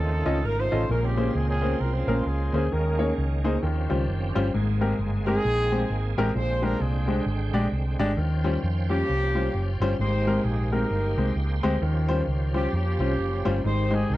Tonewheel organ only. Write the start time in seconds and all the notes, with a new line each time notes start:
Already playing: C#3 D#3 A3 F4
0.89 C#3 G#3 A#3 C5
2.72 D#3 A#3 C#4
3.63 F3 C4 G4
4.54 G#3 A#3 G#4
6.36 D3 G#3 G5
8.18 F3 C#4 C5
10.01 G#3 A#3 G4
11.82 F3 C#4 G4
13.65 D#3 G#3 G4